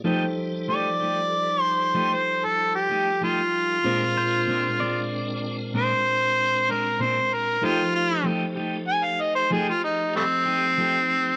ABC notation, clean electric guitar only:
X:1
M:12/8
L:1/8
Q:3/8=63
K:Fmix
V:1 name="Clean electric guitar"
[F,A,EG] z [F,A,EG] [A,EG] z2 [F,A,EG] z2 [A,EG] [F,A,EG] z | [B,,_A,CD] z [B,,A,CD] [A,CD] z2 [B,,A,CD] z2 [A,CD] [B,,A,CD] z | [F,A,EG] z [F,A,EG] [A,EG] z2 [F,A,EG] z2 [A,EG] [F,A,EG] z |]